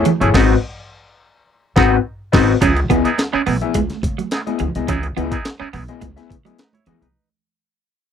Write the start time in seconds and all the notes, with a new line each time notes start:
0.05 E3, closed hi-hat, low conga
0.20 G1 A3 C#4 E4 G#4 C#5, closed hi-hat
0.34 G#1 B3 C4 D#4 F#4 B4 D#5, kick, snare, crash
1.76 G#1 B3 C4 D#4 F#4 B4 F#5, kick, snare
2.32 G#1 B3 C4 D#4 F#4 B4 D#5, kick, snare, crash
2.61 C#2 B3 C#4 D#4 E4 G#4, kick, closed hi-hat, muted conga, low conga
2.77 muted clean electric guitar stroke, closed hi-hat
2.89 C#2 B3 E4 G#4 A#4 D#5, kick, closed hi-hat
3.04 B3 D#4 E4 G#4, closed hi-hat
3.18 muted clean electric guitar stroke, snare, closed hi-hat, muted conga
3.33 B3 C#4 D#4 E4 G#4, muted upright bass stroke
3.46 B1 B3 D#4 E4 G#4, open hi-hat, high conga, low conga
3.61 B3 E4 G#4 A#4 E5, closed hi-hat
3.74 C#2 G#3, kick, closed hi-hat, muted conga, high conga
3.90 snare, closed hi-hat, muted conga
4.03 C#3, muted clean electric guitar stroke, kick, closed hi-hat
4.18 F#3, closed hi-hat, high conga
4.31 B3 D#4 E4 G#4, snare, closed hi-hat
4.47 B3 E4 G#4 D#5, closed hi-hat, muted conga, high conga
4.59 C#2 E3, closed hi-hat, low conga
4.75 C2 B3 E4 G#4 D#5, closed hi-hat
4.88 C#2 B3 C#4 D#4 E4 G#4, kick, closed hi-hat, muted conga, low conga
5.03 muted clean electric guitar stroke, closed hi-hat
5.16 C#2 B3 E4 G#4 D#5, closed hi-hat
5.31 B3 D#4 E4 G#4, kick, closed hi-hat
5.45 muted clean electric guitar stroke, snare, closed hi-hat, muted conga
5.60 B3 C#4 D#4 E4 G#4, muted upright bass stroke
5.73 B1 B3 D#4 E4 G#4, open hi-hat, high conga, low conga
5.88 B3 E4 G#4 D#5, closed hi-hat
6.01 C#2 G#3, kick, closed hi-hat, muted conga, high conga
6.16 B3 E4 G#4 E5, snare, closed hi-hat, muted conga
6.30 C#3, muted clean electric guitar stroke, kick, closed hi-hat
6.45 F#3 B3 E4 G#4 D#5, closed hi-hat, high conga
6.58 D#4 B4, snare, closed hi-hat
6.73 E4 C#5, closed hi-hat, muted conga, high conga
6.86 C#2 E3 B3 E4 F#4 G#4 D#5, closed hi-hat, low conga
7.02 C2 D#4 B4, closed hi-hat